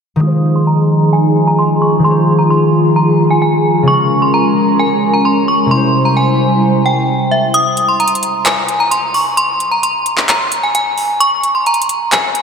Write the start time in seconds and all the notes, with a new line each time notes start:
0.16 D#3 G#3
0.21 F3 D#4 F4 G#4 D#6
0.27 C5
0.56 C6
0.67 A#5
1.13 G#5
1.47 A#5
1.59 C6
1.82 C#6
1.99 D#3 G#3
2.04 F4 C6
2.10 C5
2.39 A#5
2.50 C6
2.96 A#5
3.31 G#5
3.42 G#5
3.83 C#3 G#3
3.88 G#3 C#4 F4 A#4 C#6
3.93 A#4
4.22 C6
4.34 A#5
4.79 G#5
5.14 A#5
5.25 C6
5.48 C#6
5.66 C3 G3
5.71 G3 E4 C5 C6
5.77 C5
6.05 A#5
6.17 G#5
6.86 G5
7.31 E5
7.54 D#6, closed hi-hat
7.77 closed hi-hat
7.88 C6
8.00 A#5, closed hi-hat
8.08 closed hi-hat
8.15 closed hi-hat
8.23 closed hi-hat
8.46 G#5, clap, closed hi-hat
8.69 closed hi-hat
8.80 A#5
8.91 C6, closed hi-hat
9.14 C#6, open hi-hat
9.37 C6, closed hi-hat
9.60 closed hi-hat
9.71 A#5
9.83 C6, closed hi-hat
10.06 closed hi-hat
10.17 clap
10.29 A#5, clap, closed hi-hat
10.52 closed hi-hat
10.63 G#5
10.75 G#5, closed hi-hat
10.98 open hi-hat
11.20 C#6, closed hi-hat
11.43 closed hi-hat
11.55 C6
11.66 A#5, closed hi-hat
11.74 closed hi-hat
11.82 closed hi-hat
11.89 closed hi-hat
12.12 G#5, clap, closed hi-hat
12.35 closed hi-hat